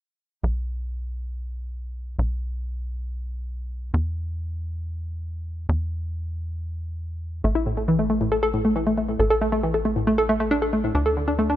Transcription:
0.43 analog synth bass B1
2.19 analog synth bass B1
3.94 analog synth bass E2
5.69 analog synth bass E2
7.44 analog synth bass A1, synth arpeggio sound A3
7.55 synth arpeggio sound E4
7.66 synth arpeggio sound A2
7.77 synth arpeggio sound A3
7.88 synth arpeggio sound E3
7.99 synth arpeggio sound A3
8.10 synth arpeggio sound A3
8.21 synth arpeggio sound A2
8.32 synth arpeggio sound A4
8.43 synth arpeggio sound A4
8.54 synth arpeggio sound A2
8.65 synth arpeggio sound A3
8.76 synth arpeggio sound E3
8.87 synth arpeggio sound A3
8.98 synth arpeggio sound A3
9.09 synth arpeggio sound A2
9.19 analog synth bass A1, synth arpeggio sound A4
9.30 synth arpeggio sound A4
9.41 synth arpeggio sound A3
9.52 synth arpeggio sound A3
9.63 synth arpeggio sound E3
9.74 synth arpeggio sound A4
9.85 synth arpeggio sound A3
9.96 synth arpeggio sound A2
10.07 synth arpeggio sound A3
10.18 synth arpeggio sound A4
10.29 synth arpeggio sound A3
10.40 synth arpeggio sound A3
10.51 synth arpeggio sound D4
10.62 synth arpeggio sound A4
10.73 synth arpeggio sound A3
10.84 synth arpeggio sound A2
10.95 analog synth bass D2, synth arpeggio sound D4
11.06 synth arpeggio sound A4
11.17 synth arpeggio sound D3
11.28 synth arpeggio sound D4
11.39 synth arpeggio sound A3
11.50 synth arpeggio sound D4

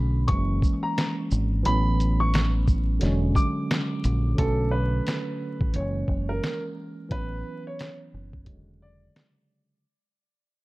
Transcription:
Already playing: fingered electric bass B1, tine electric piano D3 F#3 A3 C#4, upright piano B5
0.27 fingered electric bass F#1, tine electric piano E3 G#3 A#3, upright piano C#6, kick, closed hi-hat
0.33 tine electric piano C#4
0.62 kick, shaker
0.83 upright piano A#5
0.98 snare, clap, closed hi-hat
1.31 fingered electric bass G#1, shaker
1.63 fingered electric bass A1, tine electric piano E3 F#3 B3, upright piano B5, closed hi-hat
1.69 tine electric piano C#4
2.00 closed hi-hat, shaker
2.20 upright piano C#6
2.34 snare, clap, closed hi-hat
2.68 kick, shaker
2.99 fingered electric bass E1, tine electric piano D3 F#3 G#3, snare, closed hi-hat
3.05 tine electric piano C#4
3.35 upright piano D6, kick, shaker
3.71 snare, clap, closed hi-hat
4.04 fingered electric bass A#1, closed hi-hat, shaker
4.35 tine electric piano D3 F#3 A3, upright piano A4, kick, closed hi-hat
4.39 fingered electric bass B1, tine electric piano C#4
4.71 upright piano B4
5.07 snare, clap, closed hi-hat
5.61 fingered electric bass A1, kick
5.73 fingered electric bass F#1, tine electric piano E3 G#3 A#3, upright piano C#5, closed hi-hat
5.79 tine electric piano C#4
6.08 fingered electric bass F#1, kick
6.29 upright piano A#4
6.44 snare, clap, closed hi-hat
7.09 fingered electric bass A1, tine electric piano E3 F#3 B3, upright piano B4, kick, closed hi-hat
7.14 tine electric piano C#4
7.67 upright piano C#5
7.79 snare, clap, closed hi-hat
8.14 fingered electric bass F#1
8.33 kick
8.45 fingered electric bass E1, tine electric piano D3 F#3 G#3, kick, closed hi-hat
8.50 tine electric piano C#3
8.82 upright piano D5
9.16 snare, clap, closed hi-hat

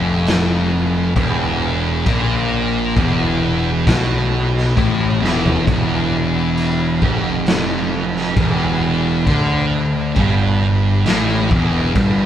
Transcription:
Already playing: picked electric bass F1, distorted electric guitar F2
0.27 snare, crash
1.15 picked electric bass E1, distorted electric guitar E2, kick, crash
2.06 picked electric bass A#1, distorted electric guitar A#2, kick, crash
2.96 picked electric bass E1, distorted electric guitar E2, kick, crash
3.87 picked electric bass B1, distorted electric guitar B2, kick, snare, crash
4.57 snare
4.76 picked electric bass A1, distorted electric guitar A2, kick, crash
5.21 picked electric bass E1, distorted electric guitar E2, snare
5.46 floor tom
5.67 picked electric bass E1, distorted electric guitar E2, kick, crash
6.57 crash
7.01 picked electric bass F1, distorted electric guitar F2, kick
7.46 snare, crash
8.16 snare
8.36 picked electric bass E1, distorted electric guitar E2, kick, crash
9.25 picked electric bass D2, distorted electric guitar D3, kick, crash
10.15 picked electric bass G1, distorted electric guitar G2, kick, crash
11.05 picked electric bass A1, distorted electric guitar A2, snare, crash
11.51 picked electric bass E1, distorted electric guitar E2, kick
11.95 picked electric bass G1, distorted electric guitar G2, kick, crash

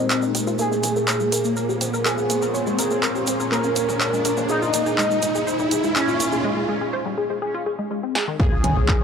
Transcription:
Already playing: synth drone A#2, analog polysynth C4, ambient pad D#4 G4 A#4, riser
0.10 synth arpeggio sound D#5, clap, shaker
0.22 synth arpeggio sound D#4, shaker
0.35 analog synth bass D#2, synth arpeggio sound G5, closed hi-hat, shaker
0.47 analog synth bass D#2, synth arpeggio sound F4, shaker
0.59 synth arpeggio sound A#3, ambient pad A#3 F4 G#4 C5 C#5, analog polysynth G#4, shaker
0.72 analog synth bass A#1, synth arpeggio sound A#3, shaker
0.83 synth arpeggio sound A#3, closed hi-hat, mid tom, shaker
0.96 analog synth bass A#1, synth arpeggio sound A#4, shaker
1.07 synth arpeggio sound C#5, clap, shaker
1.20 synth arpeggio sound G#3, shaker
1.32 analog synth bass A#1, synth arpeggio sound A#4, closed hi-hat, shaker
1.44 analog synth bass A#1, synth arpeggio sound A#3, shaker
1.57 synth arpeggio sound A#4, shaker
1.69 analog synth bass A#1, synth arpeggio sound G4, shaker
1.81 synth arpeggio sound C4, closed hi-hat, mid tom, shaker
1.94 analog synth bass A#1, synth arpeggio sound A#4, shaker
2.05 synth arpeggio sound A#3, analog polysynth G#4, clap, shaker
2.18 synth arpeggio sound A#3, shaker
2.30 analog synth bass A#1, synth arpeggio sound A#3, closed hi-hat, shaker
2.42 analog synth bass A#1, synth arpeggio sound A#4, shaker
2.54 synth arpeggio sound C#5, shaker
2.67 analog synth bass A#1, synth arpeggio sound G#3, shaker
2.79 synth arpeggio sound A#4, closed hi-hat, mid tom, shaker
2.91 analog synth bass A#1, synth arpeggio sound A#3, shaker
3.03 synth arpeggio sound A#4, clap, shaker
3.15 synth arpeggio sound G4, shaker
3.27 analog synth bass C2, synth arpeggio sound C4, closed hi-hat, shaker
3.40 analog synth bass C2, synth arpeggio sound A#4, shaker
3.52 synth arpeggio sound A#3, analog polysynth A#4, clap, shaker
3.63 analog synth bass A#1, synth arpeggio sound A#3, shaker
3.76 synth arpeggio sound A#3, closed hi-hat, shaker
3.89 analog synth bass A#1, synth arpeggio sound A#4, mid tom, shaker
4.00 synth arpeggio sound C#5, clap, shaker
4.13 synth arpeggio sound G#3, shaker
4.25 analog synth bass C#2, synth arpeggio sound A#4, closed hi-hat, shaker
4.37 analog synth bass C#2, synth arpeggio sound A#3, mid tom, shaker
4.49 analog polysynth D#4, ambient pad D#4, synth arpeggio sound G#4, shaker
4.62 synth arpeggio sound F4, shaker
4.74 synth arpeggio sound A#3, closed hi-hat, mid tom, shaker
4.86 analog synth bass G#1, synth arpeggio sound G#4, shaker
4.98 synth arpeggio sound G#3, clap, shaker
5.11 synth arpeggio sound G#3, shaker
5.22 analog synth bass G#1, synth arpeggio sound G#3, closed hi-hat, shaker
5.35 analog synth bass G#1, synth arpeggio sound G#4, shaker
5.47 synth arpeggio sound C5, shaker
5.59 analog synth bass G#1, synth arpeggio sound G3, shaker
5.71 synth arpeggio sound G#4, closed hi-hat, mid tom, shaker
5.84 synth arpeggio sound G#3, shaker
5.96 analog polysynth C#4, synth arpeggio sound G#4, clap, shaker
6.08 synth arpeggio sound F4, shaker
6.20 analog synth bass G#1, synth arpeggio sound A#3, closed hi-hat, shaker
6.32 synth arpeggio sound G#4, shaker
6.44 synth arpeggio sound G#3
6.57 synth arpeggio sound G#3
6.69 synth arpeggio sound G#3
6.81 synth arpeggio sound G#4
6.93 synth arpeggio sound C5
7.06 synth arpeggio sound G3
7.18 synth arpeggio sound G#4
7.30 synth arpeggio sound G#3
7.42 synth arpeggio sound G#4
7.54 synth arpeggio sound F4
7.66 synth arpeggio sound G#4
7.79 synth arpeggio sound G#3
7.91 synth arpeggio sound G#3
8.03 synth arpeggio sound C4
8.15 synth arpeggio sound G#4, snare
8.28 synth arpeggio sound D#3
8.40 synth drone A#2, ambient pad A#3 F4 C#5, synth arpeggio sound A#3, analog polysynth G#4, kick, impact
8.52 analog synth bass A#1, synth arpeggio sound F4
8.64 synth arpeggio sound C#4, closed hi-hat, mid tom
8.76 analog synth bass A#1, synth arpeggio sound C#5
8.88 synth arpeggio sound A#4, kick, clap

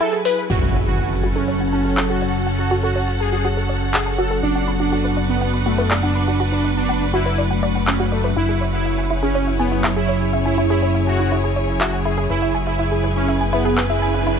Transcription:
Already playing: ambient pad F#3 E4 G#4, string section E4 G#4 B4 G#5
0.01 synth pluck E4, analog polysynth A4
0.13 synth pluck G#4
0.25 analog polysynth B4, synth pluck B4, open hi-hat
0.50 analog synth bass F#1, ambient pad F#3 C#4 A4, string section C#4, synth pluck F#4, analog polysynth F#4, impact
0.62 synth pluck A4
0.68 string section F#4
0.74 synth pluck C#5
0.87 analog polysynth F#4, string section F#5
0.99 string section A4, synth pluck F#5
1.11 synth pluck A5
1.24 synth pluck F#4
1.36 analog polysynth C#4, synth pluck A4
1.48 synth pluck C#5
1.60 synth pluck F#5
1.73 analog polysynth C#4, synth pluck A5
1.85 synth pluck F#4
1.97 synth pluck F#4, clap
2.10 analog polysynth F#4, synth pluck A4
2.22 synth pluck C#5
2.47 synth pluck F#5
2.59 analog polysynth F#4, synth pluck A5
2.71 synth pluck F#4
2.83 analog polysynth F#4, synth pluck A4
2.96 synth pluck C#5
3.08 synth pluck F#5
3.20 analog polysynth G#4, synth pluck A5
3.33 synth pluck F#4
3.45 synth pluck F#4
3.57 synth pluck A4
3.69 synth pluck C#5
3.94 analog polysynth G#4, synth pluck F#5, clap
4.06 synth pluck A5
4.18 synth pluck F#4, analog polysynth A4
4.31 synth pluck A4
4.43 analog synth bass F#1, ambient pad B3 D4, analog polysynth D4, string section D4, synth pluck D5
4.55 synth pluck F#5
4.68 synth pluck B5
4.80 analog polysynth D4, synth pluck F#4
4.85 string section B4
4.92 synth pluck F#4
5.05 synth pluck B4
5.17 synth pluck D5
5.29 analog polysynth B3
5.41 synth pluck F#5
5.54 synth pluck B5
5.66 analog polysynth A3, synth pluck F#4
5.78 synth pluck B4
5.91 synth pluck D5, clap
6.03 analog polysynth D4, synth pluck F#5
6.15 synth pluck B5
6.28 synth pluck F#4
6.40 ambient pad A3, synth pluck F#4
6.52 analog polysynth D4, synth pluck B4
6.65 synth pluck D5
6.77 analog polysynth D4
6.89 synth pluck F#5
7.01 synth pluck B5
7.14 analog polysynth E4, synth pluck F#4
7.26 synth pluck B4
7.38 synth pluck D5
7.51 synth pluck F#5
7.63 synth pluck D5
7.75 synth pluck F#5
7.87 analog polysynth C#4, synth pluck D6, clap
8.00 synth pluck F#4
8.12 analog polysynth A3, synth pluck D5
8.24 synth pluck B4
8.36 analog synth bass F#1, ambient pad C#4 E4, analog polysynth E4, synth pluck E4, string section E4
8.49 synth pluck G#4
8.56 string section G#4 C#5
8.61 synth pluck C#5
8.74 analog polysynth E4
8.86 synth pluck E5
8.98 synth pluck G#5
9.04 string section G#5
9.10 synth pluck E4
9.23 analog polysynth C#4, synth pluck G#4
9.35 synth pluck C#5
9.47 synth pluck E5
9.59 analog polysynth B3, synth pluck G#5
9.72 synth pluck E4
9.84 synth pluck E4, clap
9.96 analog polysynth E4, synth pluck G#4
10.09 synth pluck C#5
10.33 synth pluck E5
10.46 analog polysynth E4, synth pluck G#5
10.58 synth pluck E4
10.70 analog polysynth E4, synth pluck G#4
10.83 synth pluck C#5
10.95 synth pluck E5
11.07 analog polysynth F#4, synth pluck G#5
11.20 synth pluck E4
11.32 synth pluck E4
11.44 synth pluck G#4
11.56 synth pluck C#5
11.81 analog polysynth F#4, synth pluck E5, clap
11.93 synth pluck G#5
12.05 synth pluck E4, analog polysynth G#4
12.18 synth pluck G#4
12.30 analog synth bass F#1, ambient pad F#3 G#4, analog polysynth E4, synth pluck B4, riser
12.42 synth pluck E5
12.55 synth pluck G#5
12.64 synth pluck E4, analog polysynth E4, string section B4
12.79 synth pluck E4
12.92 synth pluck G#4
13.04 synth pluck B4
13.16 analog polysynth C#4
13.28 synth pluck E5
13.41 synth pluck G#5
13.53 analog polysynth B3, synth pluck E4
13.65 synth pluck G#4
13.78 synth pluck B4, clap
13.90 analog polysynth E4, synth pluck E5
14.02 synth pluck G#5
14.14 synth pluck E4
14.27 synth pluck E4

